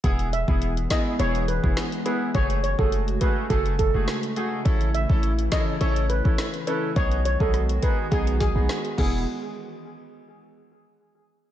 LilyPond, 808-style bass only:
\new Staff \with { instrumentName = "808-style bass" } { \clef bass \time 4/4 \key e \major \tempo 4 = 104 e,,8. e,,8. r8 e,,8. e,,16 r4 | fis,,8. fis,,8. r8 fis,,8. fis,,16 r4 | a,,8. a,,8. r8 a,,8. a,,16 r4 | b,,8. b,,8. r8 b,,8. b,,16 r8 e,,8 |
r1 | }